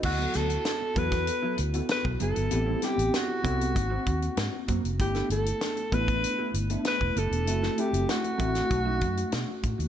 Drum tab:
CC |x---------------|----------------|----------------|----------------|
HH |--xxx-xxx-xxx-xx|x-xxx-xxx-xxx-xx|xxxxxxxxx-xxx-xx|x-xxxxxxx-xxx-xx|
SD |--o-o--o----o---|--o-o-------o---|-o--o-------o---|-o--o--o----o---|
BD |o-----oo-----o--|------o-o-o---o-|o-----oo-----o--|------o-o-o---o-|